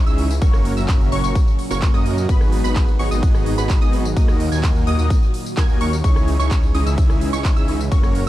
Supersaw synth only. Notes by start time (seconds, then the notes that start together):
0.06 C#4 D#4 E4 G#4 E5
0.42 A#3 C#4 F#4 A#4 C#5
0.77 A#3 C#4 F#4 A#4 E5
1.12 A#3 C#4 F#4 A#4 C#5
1.24 A#3 C#4 F#4 A#4 C#5
1.70 A#3 C#4 F#4 A#4 C#5
1.94 A#3 C#4 F#4 A#4 D#5
2.29 B3 D#4 F#4 B4
2.64 B3 D#4 F#4 G#4 B4
2.99 B3 D#4 F#4 G#4 C#5
3.11 B3 D#4 F#4 G#4 D#5
3.58 B3 D#4 F#4 G#4 B4
3.81 B3 D#4 F#4 G#4 D#5
4.17 A#3 D#4 F#4 A#4 D#5
4.52 A#3 D#4 F#4 A#4 G#5
4.87 A#3 D#4 F#4 A#4 D#5
4.99 A#3 D#4 F#4 A#4 D#5
5.57 A#3 D#4 F#4 A#4 G#5
5.81 A#3 D#4 F#4 A#4 C#5
6.04 C#4 D#4 E4 G#4 C#5
6.39 C#4 D#4 E4 G#4 C#5
6.74 C#4 D#4 E4 G#4 D#5
6.86 C#4 D#4 E4 G#4 E5
7.33 C#4 D#4 E4 G#4 C#5
7.57 C#4 D#4 E4 G#4 E5
7.92 A#3 C#4 F#4 A#4 C#5